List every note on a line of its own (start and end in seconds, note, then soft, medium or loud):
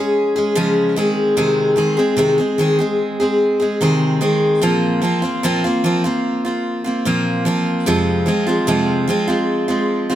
0.00 0.37 G#3 soft
0.00 0.36 C#4 medium
0.00 0.35 G#4 medium
0.36 0.56 G#3 soft
0.36 0.56 C#4 soft
0.36 0.57 G#4 medium
0.55 0.97 C#3 medium
0.55 0.96 F3 medium
0.55 0.96 G#3 medium
0.55 0.98 C#4 medium
0.55 0.98 G#4 medium
0.96 1.36 D#3 medium
0.96 1.36 G#3 medium
0.96 1.37 C4 medium
0.96 1.37 G#4 medium
1.37 1.78 C3 medium
1.37 1.75 D#3 medium
1.37 1.76 G#3 medium
1.37 1.76 C4 medium
1.37 1.77 G#4 medium
1.76 1.97 D#3 soft
1.76 1.98 G#3 medium
1.76 1.98 C4 medium
1.76 1.96 G#4 medium
1.97 2.17 G#3 soft
1.97 2.17 C4 medium
1.97 2.18 G#4 medium
2.17 2.38 C3 medium
2.17 2.39 D#3 medium
2.17 2.39 G#3 medium
2.17 2.38 C4 medium
2.17 2.37 G#4 medium
2.38 2.58 G#3 soft
2.38 2.59 C4 soft
2.38 2.59 G#4 medium
2.58 2.79 D#3 medium
2.58 2.80 G#3 medium
2.58 2.79 C4 medium
2.58 2.77 G#4 medium
2.79 3.21 G#3 soft
2.79 3.20 C4 medium
2.79 3.19 G#4 medium
3.20 3.61 G#3 soft
3.20 3.60 C4 soft
3.20 3.58 G#4 medium
3.60 3.80 G#3 soft
3.60 3.81 C4 soft
3.60 3.81 G#4 medium
3.81 4.22 C3 medium
3.81 4.20 D#3 medium
3.81 4.20 G#3 medium
3.81 4.21 C4 medium
3.81 4.22 G#4 medium
4.21 4.62 D#3 medium
4.21 4.62 G#3 medium
4.21 4.62 C4 medium
4.21 4.63 G#4 medium
4.61 5.02 A#2 medium
4.61 5.00 F3 medium
4.61 5.01 A#3 medium
4.61 5.02 C4 medium
4.61 5.03 F4 medium
5.02 5.23 F3 medium
5.02 5.23 A#3 medium
5.02 5.22 C4 medium
5.02 5.21 F4 medium
5.22 5.43 A#3 soft
5.22 5.44 C4 soft
5.22 5.43 F4 medium
5.43 5.64 A#2 medium
5.43 5.64 F3 medium
5.43 5.64 A#3 medium
5.43 5.64 C4 loud
5.43 5.63 F4 medium
5.64 5.83 A#3 soft
5.64 5.84 C4 soft
5.64 5.84 F4 medium
5.84 6.04 F3 medium
5.84 6.04 A#3 medium
5.84 6.04 C4 medium
5.84 6.03 F4 medium
6.04 6.46 A#3 soft
6.04 6.45 C4 medium
6.04 6.43 F4 medium
6.45 6.86 A#3 medium
6.45 6.85 C4 soft
6.45 6.83 F4 medium
6.84 7.05 A#3 soft
6.84 7.06 C4 soft
6.84 7.05 F4 medium
7.05 7.46 A#2 medium
7.05 7.44 F3 medium
7.05 7.45 A#3 medium
7.05 7.46 C4 medium
7.05 7.47 F4 medium
7.45 7.86 F3 medium
7.45 7.87 A#3 medium
7.45 7.87 C4 medium
7.45 7.87 F4 medium
7.86 8.27 F2 medium
7.86 8.27 C3 medium
7.86 8.25 F3 medium
7.86 8.26 G#3 medium
7.86 8.27 C4 medium
7.86 8.27 F4 medium
8.26 8.47 F3 medium
8.26 8.47 G#3 medium
8.26 8.46 C4 medium
8.26 8.45 F4 medium
8.47 8.67 F3 soft
8.47 8.67 G#3 medium
8.47 8.67 C4 medium
8.47 8.67 F4 medium
8.67 9.08 F2 medium
8.67 9.08 C3 medium
8.67 9.06 F3 medium
8.67 9.08 G#3 medium
8.67 9.09 C4 medium
8.67 9.09 F4 medium
9.08 9.28 F3 medium
9.08 9.28 G#3 medium
9.08 9.27 C4 medium
9.08 9.26 F4 medium
9.28 9.69 F3 soft
9.28 9.69 G#3 medium
9.28 9.68 C4 medium
9.28 9.67 F4 medium
9.68 10.10 F3 medium
9.68 10.10 G#3 soft
9.68 10.09 C4 medium
9.68 10.08 F4 medium
10.10 10.15 F3 soft
10.10 10.15 G#3 soft
10.10 10.15 C4 medium
10.10 10.15 F4 medium